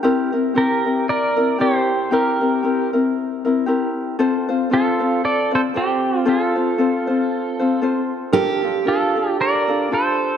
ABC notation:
X:1
M:4/4
L:1/8
Q:"Swing" 1/4=116
K:Fmix
V:1 name="Pedal steel guitar"
z2 [GB]2 [Bd]2 [Gc]2 | [GB]3 z4 z | z2 [FA]2 [Ad] [Ac] [CG]2 | [FA]6 z2 |
z2 [FA]2 [Bd]2 [Ac]2 |]
V:2 name="Steel-string acoustic guitar"
z8 | z8 | z8 | z8 |
G8 |]
V:3 name="Ukulele"
[C=EGB] [CEB] [CEGB] [CEB]2 [CEB] [CEGB]2 | [C=EGB] [CEB] [CEGB] [CEB]2 [CEB] [CEGB]2 | [CFAc] [CFc] [CFAc] [CFc]2 [CFc] [CFAc]2 | [CFAc] [CFc] [CFAc] [CFc]2 [CFc] [CFAc]2 |
[DFAB] [DFA] [DFAB] [DFA]2 [DFA] [DFA]2 |]